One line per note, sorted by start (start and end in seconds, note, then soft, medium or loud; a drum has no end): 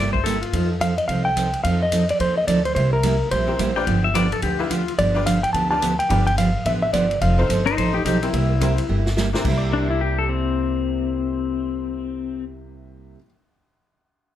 0.00 0.42 G1 medium
0.00 0.17 C3 medium
0.00 0.17 G3 medium
0.00 0.17 A#3 medium
0.00 0.17 E4 medium
0.00 0.18 G4 medium
0.00 0.12 D5 medium
0.13 0.24 C5 medium
0.13 kick medium
0.24 0.36 C3 medium
0.24 0.36 G3 medium
0.24 0.36 A#3 medium
0.24 0.37 E4 medium
0.24 0.37 G4 medium
0.24 0.41 A4 medium
0.24 kick soft
0.24 hi-hat pedal medium
0.24 ride medium
0.41 0.69 F4 medium
0.41 ride soft
0.53 0.98 F2 medium
0.53 0.73 F3 medium
0.53 0.73 C4 medium
0.53 0.73 D#4 medium
0.53 0.73 A4 medium
0.53 kick soft
0.53 ride medium
0.81 0.92 F3 medium
0.81 0.92 C4 medium
0.81 0.92 D#4 medium
0.81 0.92 A4 medium
0.81 0.97 F5 loud
0.81 kick soft
0.81 hi-hat pedal medium
0.81 ride medium
0.98 1.07 D#5 medium
0.98 ride soft
1.08 1.53 C2 medium
1.08 1.28 F3 medium
1.08 1.28 C4 medium
1.08 1.28 D#4 medium
1.08 1.29 A4 medium
1.08 1.24 F5 loud
1.08 kick soft
1.08 ride medium
1.25 1.61 G5 loud
1.36 1.47 F3 medium
1.36 1.48 C4 medium
1.36 1.48 D#4 medium
1.36 1.48 A4 medium
1.36 kick soft
1.36 hi-hat pedal medium
1.36 ride medium
1.53 ride soft
1.64 2.09 F2 medium
1.64 1.84 F3 medium
1.64 1.84 C4 medium
1.64 1.84 D#4 medium
1.64 1.84 A4 medium
1.64 1.82 F5 loud
1.64 kick soft
1.64 ride medium
1.83 2.10 D#5 medium
1.92 2.03 F3 medium
1.92 2.03 C4 medium
1.92 2.04 D#4 medium
1.92 2.04 A4 medium
1.92 kick soft
1.92 hi-hat pedal medium
1.92 ride medium
2.09 2.20 D5 medium
2.09 ride medium
2.20 2.44 D#2 medium
2.20 2.39 F3 medium
2.20 2.39 C4 medium
2.20 2.40 D#4 medium
2.20 2.40 A4 medium
2.20 2.37 C5 medium
2.20 kick soft
2.20 ride medium
2.38 2.47 D#5 medium
2.48 2.72 D2 medium
2.48 2.59 F3 medium
2.48 2.59 C4 medium
2.48 2.59 D#4 medium
2.48 2.59 A4 medium
2.48 2.65 D5 loud
2.48 kick soft
2.48 hi-hat pedal medium
2.48 ride medium
2.65 2.74 C5 medium
2.65 ride soft
2.75 3.20 C2 medium
2.75 2.95 C3 medium
2.75 2.95 G3 medium
2.75 2.95 A#3 medium
2.75 2.95 E4 medium
2.75 2.96 G4 medium
2.75 2.93 C5 medium
2.75 kick soft
2.75 ride medium
2.93 3.31 A#4 medium
3.03 3.15 C3 medium
3.03 3.15 G3 medium
3.03 3.15 A#3 medium
3.03 3.15 E4 medium
3.03 3.15 G4 medium
3.03 kick soft
3.03 hi-hat pedal medium
3.03 ride medium
3.31 3.55 A#1 medium
3.31 3.51 C3 medium
3.31 3.51 G3 medium
3.31 3.51 A#3 medium
3.31 3.51 E4 medium
3.31 3.52 G4 medium
3.31 3.83 C5 medium
3.31 kick soft
3.31 ride medium
3.47 3.58 C4 medium
3.47 3.58 E4 medium
3.47 3.58 G4 medium
3.47 3.58 A#4 medium
3.47 3.58 C5 medium
3.59 3.83 A1 medium
3.59 3.70 C3 medium
3.59 3.70 G3 medium
3.59 3.71 A#3 medium
3.59 3.71 E4 medium
3.59 3.71 G4 medium
3.59 kick soft
3.59 hi-hat pedal medium
3.59 ride medium
3.76 3.86 D4 medium
3.76 3.86 F4 medium
3.76 3.86 G4 medium
3.76 3.86 B4 medium
3.76 3.87 D5 medium
3.76 4.03 G5 medium
3.87 4.32 G1 medium
3.87 4.06 D3 medium
3.87 4.07 F3 medium
3.87 4.07 B3 medium
3.87 4.07 D4 medium
3.87 4.07 G4 medium
3.87 kick soft
3.87 ride medium
4.04 4.15 E5 medium
4.14 4.26 D3 medium
4.14 4.26 F3 medium
4.14 4.26 B3 medium
4.14 4.30 D4 medium
4.14 4.26 D4 medium
4.14 4.30 F4 medium
4.14 4.30 G4 medium
4.14 4.26 G4 medium
4.14 4.30 B4 medium
4.14 4.32 D5 medium
4.14 4.31 D5 medium
4.14 kick soft
4.14 hi-hat pedal medium
4.14 ride medium
4.32 4.43 A4 medium
4.32 ride soft
4.42 4.87 D2 medium
4.42 4.62 D3 medium
4.42 4.62 F3 medium
4.42 4.62 B3 medium
4.42 4.62 D4 medium
4.42 4.60 G4 medium
4.42 4.63 G4 medium
4.42 kick soft
4.42 ride medium
4.59 4.69 D4 medium
4.59 4.70 E4 medium
4.59 4.69 F4 medium
4.59 4.69 G4 medium
4.59 4.70 B4 medium
4.59 4.70 F5 medium
4.70 4.81 D3 medium
4.70 4.81 F3 medium
4.70 4.81 B3 medium
4.70 4.82 D4 medium
4.70 4.93 F4 medium
4.70 4.82 G4 medium
4.70 kick soft
4.70 hi-hat pedal medium
4.70 ride medium
4.88 ride soft
4.98 5.43 G1 medium
4.98 5.18 D3 medium
4.98 5.18 F3 medium
4.98 5.18 B3 medium
4.98 5.18 D4 medium
4.98 5.18 G4 medium
4.98 5.25 D5 medium
4.98 kick soft
4.98 ride medium
5.14 5.25 D4 medium
5.14 5.25 F4 medium
5.14 5.25 G4 medium
5.14 5.26 B4 medium
5.14 5.26 D5 medium
5.26 5.37 D3 medium
5.26 5.37 F3 medium
5.26 5.38 B3 medium
5.26 5.38 D4 medium
5.26 5.38 G4 medium
5.26 5.43 F5 medium
5.26 kick soft
5.26 hi-hat pedal medium
5.26 ride medium
5.43 5.53 G5 medium
5.43 ride soft
5.53 5.99 D2 medium
5.53 5.74 D3 medium
5.53 5.74 F3 medium
5.53 5.74 B3 medium
5.53 5.74 D4 medium
5.53 5.74 G4 medium
5.53 5.70 A5 loud
5.53 kick soft
5.53 ride medium
5.70 5.81 D4 medium
5.70 5.81 F4 medium
5.70 5.81 G4 medium
5.70 5.81 B4 medium
5.70 5.81 D5 medium
5.70 5.97 A5 loud
5.82 5.93 D3 medium
5.82 5.93 F3 medium
5.82 5.93 B3 medium
5.82 5.93 D4 medium
5.82 5.93 G4 medium
5.82 kick soft
5.82 hi-hat pedal medium
5.82 ride medium
5.99 6.25 G5 loud
5.99 ride soft
6.09 6.55 G1 loud
6.09 6.29 D3 medium
6.09 6.29 F3 medium
6.09 6.30 B3 medium
6.09 6.25 D4 medium
6.09 6.30 D4 medium
6.09 6.25 F4 medium
6.09 6.26 G4 medium
6.09 6.30 G4 medium
6.09 6.26 B4 medium
6.09 6.26 D5 medium
6.09 kick soft
6.09 ride medium
6.27 6.38 G5 medium
6.27 ride soft
6.38 6.49 D3 medium
6.38 6.49 F3 medium
6.38 6.49 B3 medium
6.38 6.49 D4 medium
6.38 6.50 G4 medium
6.38 6.66 F5 medium
6.38 kick soft
6.38 hi-hat pedal medium
6.38 ride medium
6.66 6.89 A1 medium
6.66 6.85 D3 medium
6.66 6.86 F3 medium
6.66 6.86 B3 medium
6.66 6.86 D4 medium
6.66 6.86 G4 medium
6.66 6.71 E5 medium
6.66 kick soft
6.66 ride medium
6.82 6.93 E5 medium
6.93 7.17 G1 medium
6.93 7.04 D3 medium
6.93 7.05 F3 medium
6.93 7.05 B3 medium
6.93 7.05 D4 medium
6.93 7.05 G4 medium
6.93 7.19 D5 medium
6.93 kick soft
6.93 hi-hat pedal medium
6.93 ride medium
7.11 ride soft
7.21 7.44 F1 medium
7.21 7.41 F3 medium
7.21 7.41 C4 medium
7.21 7.41 D#4 medium
7.21 7.41 A4 medium
7.21 7.38 F5 medium
7.21 kick soft
7.21 ride medium
7.38 7.48 C4 medium
7.38 7.48 D#4 medium
7.38 7.48 F4 medium
7.38 7.49 A4 medium
7.38 7.65 C5 medium
7.38 7.49 C5 medium
7.49 7.73 G1 medium
7.49 7.60 F3 medium
7.49 7.61 C4 medium
7.49 7.61 D#4 medium
7.49 7.61 A4 medium
7.49 kick soft
7.49 hi-hat pedal medium
7.49 ride medium
7.66 7.76 D#4 medium
7.66 7.77 C5 medium
7.66 ride soft
7.77 8.01 A1 medium
7.77 7.97 F3 medium
7.77 7.97 C4 medium
7.77 7.92 D#4 medium
7.77 7.98 D#4 medium
7.77 7.98 A4 medium
7.77 7.94 C5 medium
7.77 kick soft
7.77 ride medium
7.93 8.04 D#4 medium
7.93 8.05 G4 medium
8.05 8.29 B1 medium
8.05 8.16 F3 medium
8.05 8.17 C4 medium
8.05 8.21 D#4 medium
8.05 8.17 D#4 medium
8.05 8.22 G4 medium
8.05 8.17 A4 medium
8.05 kick soft
8.05 hi-hat pedal medium
8.05 ride medium
8.22 8.32 C4 medium
8.22 9.04 E4 medium
8.22 8.32 E4 medium
8.22 8.32 G4 medium
8.22 8.33 A#4 medium
8.22 8.33 C5 medium
8.22 ride medium
8.33 8.78 C2 medium
8.33 8.53 C3 medium
8.33 8.53 G3 medium
8.33 8.53 A#3 medium
8.33 8.53 E4 medium
8.33 8.53 G4 medium
8.33 kick soft
8.33 ride medium
8.61 8.72 C3 medium
8.61 8.72 G3 medium
8.61 8.72 A#3 medium
8.61 8.76 C4 medium
8.61 8.76 E4 medium
8.61 8.72 E4 medium
8.61 8.76 G4 medium
8.61 8.72 G4 medium
8.61 8.77 A#4 medium
8.61 8.77 C5 medium
8.61 kick soft
8.61 hi-hat pedal medium
8.61 ride medium
8.78 ride medium
8.89 9.34 G1 medium
8.89 9.08 C3 medium
8.89 9.08 G3 medium
8.89 9.08 A#3 medium
8.89 9.09 E4 medium
8.89 9.09 G4 medium
9.06 snare medium
9.16 9.28 C3 medium
9.16 9.28 G3 medium
9.16 9.28 A#3 medium
9.16 9.28 E4 medium
9.16 9.28 G4 medium
9.16 snare medium
9.16 hi-hat pedal medium
9.33 13.12 C3 medium
9.33 9.43 D4 medium
9.33 9.43 E4 medium
9.33 9.44 G4 medium
9.33 9.44 A#4 medium
9.33 9.44 C5 medium
9.33 snare medium
9.39 13.15 C4 medium
9.44 13.14 C2 medium
9.44 13.17 C3 medium
9.44 13.18 G3 medium
9.44 13.18 A#3 medium
9.44 13.18 E4 medium
9.44 13.19 E4 medium
9.44 13.19 G4 medium
9.44 kick medium
9.44 crash medium
9.51 13.21 A#4 medium
9.58 13.24 D5 medium
9.73 9.90 D4 medium
9.90 10.00 E4 medium
10.01 10.17 G4 medium
10.18 10.28 A4 medium
10.29 12.44 C4 loud